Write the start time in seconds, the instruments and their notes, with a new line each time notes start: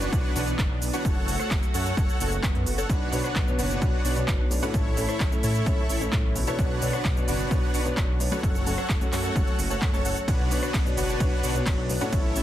Already playing: analog synth pad E3 B3 D4, supersaw synth D4 F#4 B4 C#5 F#5
0.01 closed hi-hat, cabasa
0.13 detuned saw bass B1, kick, closed hi-hat, cabasa
0.36 detuned saw bass B1, supersaw synth D4 F#4 B4 C#5 F#5, open hi-hat, cabasa
0.47 closed hi-hat, cabasa
0.59 detuned saw bass F#1, kick, clap, closed hi-hat, cabasa
0.70 detuned saw bass B1
0.82 detuned saw bass B1, open hi-hat, cabasa
0.93 supersaw synth D4 F#4 B4 C#5 F#5, closed hi-hat, cabasa
1.05 detuned saw bass F#1, analog synth pad A3 F#4, supersaw synth A4 C#5 F#5, kick, closed hi-hat, cabasa
1.16 detuned saw bass F#1
1.28 detuned saw bass F#1, open hi-hat, cabasa
1.39 supersaw synth A4 C#5 F#5, cross-stick, cabasa
1.51 detuned saw bass F#1, kick, clap, closed hi-hat, cabasa
1.63 closed hi-hat, cabasa
1.74 detuned saw bass F#2, supersaw synth A4 C#5 F#5, open hi-hat, cabasa
1.86 closed hi-hat, cabasa
1.97 detuned saw bass F#1, kick, closed hi-hat, swell, cabasa
2.09 cabasa
2.20 detuned saw bass F#1, supersaw synth A4 C#5 F#5, open hi-hat, cabasa
2.32 closed hi-hat, cabasa
2.43 detuned saw bass F#1, kick, clap, closed hi-hat, cabasa
2.55 detuned saw bass F#2, closed hi-hat
2.66 detuned saw bass F#1, open hi-hat, cabasa
2.78 supersaw synth A4 C#5 F#5, closed hi-hat, cabasa
2.89 detuned saw bass B1, analog synth pad B3 D4, supersaw synth D4 F#4 B4 C#5 F#5, kick, closed hi-hat, cabasa
3.01 detuned saw bass B1
3.12 detuned saw bass B1, felt piano B2 D4 F#4 B4 C#5, open hi-hat, cabasa
3.24 supersaw synth D4 F#4 B4 C#5 F#5, cross-stick, closed hi-hat, cabasa
3.36 detuned saw bass B1, kick, clap, closed hi-hat, cabasa
3.47 felt piano B2 D4 F#4 B4 C#5, cabasa
3.59 detuned saw bass F#1, supersaw synth D4 F#4 B4 C#5 F#5, open hi-hat, cabasa
3.70 closed hi-hat, cabasa
3.81 detuned saw bass B1, felt piano B2 D4 F#4 B4 C#5, kick, closed hi-hat, cabasa
4.05 detuned saw bass B1, supersaw synth D4 F#4 B4 C#5 F#5, open hi-hat, cabasa
4.16 felt piano B2 D4 F#4 B4 C#5, closed hi-hat, cabasa
4.28 detuned saw bass F#1, kick, clap, closed hi-hat, cabasa
4.40 detuned saw bass B1
4.50 detuned saw bass B1, felt piano D4 F#4 B4 C#5, open hi-hat, cabasa
4.62 felt piano A2 C#4 E4 A4 C#5, supersaw synth D4 F#4 B4 C#5 F#5, closed hi-hat, cabasa
4.74 detuned saw bass A1, analog synth pad A3 E4, supersaw synth E4 A4 C#5, kick, closed hi-hat, cabasa
4.86 detuned saw bass A1
4.96 detuned saw bass A1, felt piano A2 C#4 E4 A4 C#5, open hi-hat, cabasa
5.09 supersaw synth E4 A4 C#5, cross-stick, closed hi-hat, cabasa
5.20 detuned saw bass A1, kick, clap, closed hi-hat, cabasa
5.31 felt piano A2 C#4 E4 A4 C#5, cabasa
5.43 detuned saw bass A2, supersaw synth E4 A4 C#5, open hi-hat, cabasa
5.55 closed hi-hat, cabasa
5.66 detuned saw bass A1, felt piano A2 C#4 E4 A4 C#5, kick, closed hi-hat, cabasa
5.89 detuned saw bass A1, supersaw synth E4 A4 C#5, open hi-hat, cabasa
6.00 felt piano A2 C#4 E4 A4 C#5, closed hi-hat, cabasa
6.12 detuned saw bass A2, kick, clap, closed hi-hat, cabasa
6.24 detuned saw bass A1
6.35 detuned saw bass A1, felt piano B2 C#4 E4 A4 C#5, open hi-hat, cabasa
6.46 felt piano B2 D4 F#4 B4 C#5, supersaw synth E4 A4 C#5, closed hi-hat, cabasa
6.59 detuned saw bass B1, analog synth pad B3 D4, supersaw synth D4 F#4 B4 C#5 F#5, kick, closed hi-hat, cabasa
6.70 detuned saw bass B1
6.81 detuned saw bass B1, felt piano B2 D4 F#4 B4 C#5, open hi-hat, cabasa
6.93 supersaw synth D4 F#4 B4 C#5 F#5, cross-stick, closed hi-hat, cabasa
7.05 detuned saw bass B1, kick, clap, closed hi-hat, cabasa
7.16 felt piano B2 D4 F#4 B4 C#5, cabasa
7.28 detuned saw bass F#1, supersaw synth D4 F#4 B4 C#5 F#5, open hi-hat, cabasa
7.39 closed hi-hat, cabasa
7.50 detuned saw bass B1, felt piano B2 D4 F#4 B4 C#5, kick, closed hi-hat, cabasa
7.74 detuned saw bass B1, supersaw synth D4 F#4 B4 C#5 F#5, open hi-hat, cabasa
7.85 felt piano B2 D4 F#4 B4 C#5, closed hi-hat, cabasa
7.97 detuned saw bass F#1, kick, clap, closed hi-hat, cabasa
8.09 detuned saw bass B1
8.20 detuned saw bass B1, felt piano D4 F#4 B4 C#5, open hi-hat, cabasa
8.31 felt piano F#3 C#4 F#4 A4 C#5, supersaw synth D4 F#4 B4 C#5 F#5, cabasa
8.43 detuned saw bass F#1, analog synth pad A3 F#4, supersaw synth A4 C#5 F#5, kick, closed hi-hat, cabasa
8.55 detuned saw bass F#1, closed hi-hat, cabasa
8.66 detuned saw bass F#1, felt piano F#3 C#4 F#4 A4 C#5, open hi-hat, cabasa
8.78 supersaw synth A4 C#5 F#5, cross-stick, cabasa
8.89 detuned saw bass F#1, kick, clap, closed hi-hat, cabasa
9.00 felt piano F#3 C#4 F#4 A4 C#5, closed hi-hat, cabasa
9.12 detuned saw bass F#2, supersaw synth A4 C#5 F#5, clap, open hi-hat, cabasa
9.24 closed hi-hat, cabasa
9.35 detuned saw bass F#1, felt piano F#3 C#4 F#4 A4 C#5, kick, closed hi-hat, cabasa
9.47 closed hi-hat
9.59 detuned saw bass F#1, open hi-hat, cabasa
9.70 supersaw synth A4 C#5 F#5, closed hi-hat, cabasa
9.82 detuned saw bass F#2, kick, clap, closed hi-hat, cabasa
9.93 detuned saw bass F#1, felt piano F#3 C#4 F#4 A4 C#5, supersaw synth A4 C#5 A5, cabasa
10.05 detuned saw bass F#1, supersaw synth A4 C#5 F#5, open hi-hat, cabasa
10.16 closed hi-hat, cabasa
10.28 detuned saw bass B1, analog synth pad B3 D4, supersaw synth D4 F#4 B4 C#5 F#5, kick, closed hi-hat, ride, cabasa
10.39 detuned saw bass B1
10.50 detuned saw bass B1, felt piano B2 D4 F#4 B4 C#5, open hi-hat, cabasa
10.63 supersaw synth D4 F#4 B4 C#5 F#5, cross-stick, closed hi-hat, cabasa
10.74 detuned saw bass B1, kick, clap, closed hi-hat, ride, cabasa
10.85 felt piano B2 D4 F#4 B4 C#5, cabasa
10.97 detuned saw bass F#1, supersaw synth D4 F#4 B4 C#5 F#5, open hi-hat, cabasa
11.09 closed hi-hat, cabasa
11.20 detuned saw bass B1, felt piano B2 D4 F#4 B4 C#5, kick, closed hi-hat, ride, cabasa
11.43 detuned saw bass B1, supersaw synth D4 F#4 B4 C#5 F#5, open hi-hat, cabasa
11.54 felt piano B2 D4 F#4 B4 C#5, closed hi-hat, cabasa
11.66 detuned saw bass F#1, kick, clap, closed hi-hat, ride, cabasa
11.78 detuned saw bass B1
11.89 detuned saw bass B1, felt piano D4 F#4 B4 C#5, open hi-hat, cabasa
12.00 felt piano A2 C#4 E4 A4 C#5, supersaw synth D4 F#4 B4 C#5 F#5, closed hi-hat, cabasa
12.13 detuned saw bass A1, analog synth pad A3 E4, supersaw synth E4 A4 C#5, kick, closed hi-hat, ride, cabasa
12.24 detuned saw bass A1
12.35 detuned saw bass A1, felt piano A2 C#4 E4 A4 C#5, open hi-hat, cabasa